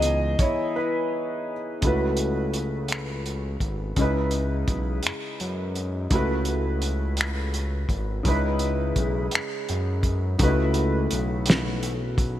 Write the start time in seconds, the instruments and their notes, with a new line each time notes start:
Already playing: analog synth bass C#2, grand piano E3 B3 D#4 G#4 D#5
0.02 closed hi-hat
0.39 grand piano E4 C#5, kick, closed hi-hat
0.76 grand piano E4 B4
1.81 analog synth bass C#2, grand piano C#3 A3 E4, kick, closed hi-hat
1.85 grand piano F#4 B4
2.17 closed hi-hat
2.54 closed hi-hat
2.88 closed hi-hat
2.92 finger snap
3.26 closed hi-hat
3.60 analog synth bass G#1, kick, closed hi-hat
3.96 analog synth bass C#2, grand piano C#3 G#3 D#4, kick, closed hi-hat
4.01 grand piano E4 B4
4.31 closed hi-hat
4.68 analog synth bass B1, kick, closed hi-hat
5.03 analog synth bass F#2, closed hi-hat
5.07 finger snap
5.40 analog synth bass F#2, closed hi-hat
5.75 closed hi-hat
6.10 analog synth bass C#2, grand piano C#3 A3 E4 F#4, kick, closed hi-hat
6.15 grand piano B4
6.45 closed hi-hat
6.82 closed hi-hat
7.17 closed hi-hat
7.21 finger snap
7.54 closed hi-hat
7.89 analog synth bass G#1, kick, closed hi-hat
8.23 analog synth bass C#2, grand piano C#3 G#3 D#4, kick, closed hi-hat
8.27 grand piano E4 B4
8.59 closed hi-hat
8.96 analog synth bass B1, kick, closed hi-hat
9.31 closed hi-hat
9.35 finger snap
9.69 analog synth bass F#2, closed hi-hat
10.03 kick, closed hi-hat
10.38 analog synth bass C#2, grand piano C#3 A3 D#4, kick, closed hi-hat
10.43 grand piano F#4 B4
10.48 grand piano E4
10.74 closed hi-hat
11.11 analog synth bass B1, closed hi-hat
11.46 closed hi-hat
11.50 snare
11.83 closed hi-hat
12.18 kick, closed hi-hat